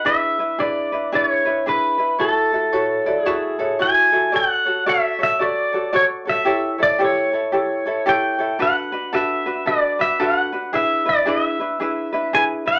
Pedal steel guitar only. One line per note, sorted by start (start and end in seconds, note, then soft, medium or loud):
0.06 0.61 E5 loud
0.60 1.15 D5 medium
1.15 1.26 D5 medium
1.26 1.69 C#5 medium
1.69 2.22 B4 medium
2.21 3.21 A4 medium
3.21 3.76 G#4 medium
3.82 4.35 G#5 loud
4.36 4.84 F#5 loud
4.89 5.22 E5 medium
5.23 5.42 E5 medium
5.42 5.95 D5 medium
5.96 6.04 C#5 medium
6.29 6.83 E5 loud
6.83 7.02 D5 loud
7.04 8.12 C#5 medium
8.09 8.62 G5 loud
8.62 9.14 F#5 loud
9.15 9.69 E5 medium
9.67 10.01 D5 medium
10.01 10.21 E5 loud
10.22 10.75 F#5 loud
10.75 11.08 E5 loud
11.09 11.28 D5 medium
11.29 12.37 E5 medium
12.35 12.43 G#5 loud
12.68 12.79 F#5 medium